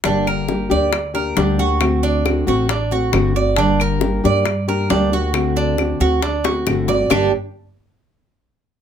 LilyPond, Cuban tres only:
\new Staff \with { instrumentName = "Cuban tres" } { \time 4/4 \key g \minor \tempo 4 = 136 d'8 bes'4 d''4 bes'8 d'8 fis'8~ | fis'8 d'4 fis'8 d'8 fis'4 d''8 | d'8 bes'4 d''4 bes'8 d'8 fis'8~ | fis'8 d'4 fis'8 d'8 fis'4 d''8 |
<g d' g'>8 r2. r8 | }